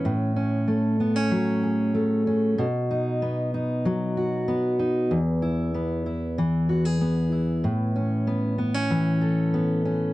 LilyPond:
\new Staff \with { instrumentName = "Steel-string acoustic guitar" } { \time 4/4 \key e \major \tempo 4 = 95 a,8 cis'8 a8 b16 cis'16 fis8 gis'8 a8 cis'8 | b,8 dis'8 b8 dis'8 fis8 fis'8 b8 dis'8 | e,8 e'8 b8 e'8 e8 fis'16 gis'16 b8 e'8 | a,8 cis'8 b8 b16 cis'16 e8 a'8 b8 cis'8 | }